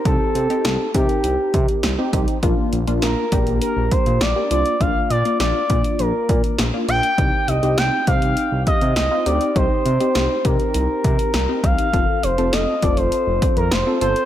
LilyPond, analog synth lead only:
\new Staff \with { instrumentName = "Analog synth lead" } { \time 4/4 \key c \dorian \tempo 4 = 101 a'4. g'2 r8 | r4 bes'4 bes'8 c''8 d''8 d''8 | f''8 d''8 d''4 bes'4 r8 g''8~ | g''8 ees''8 g''8 f''4 ees''8 ees''8 d''8 |
c''4. bes'2 f''8~ | f''8 c''8 ees''8 d''16 c''4 bes'16 c''8 c''8 | }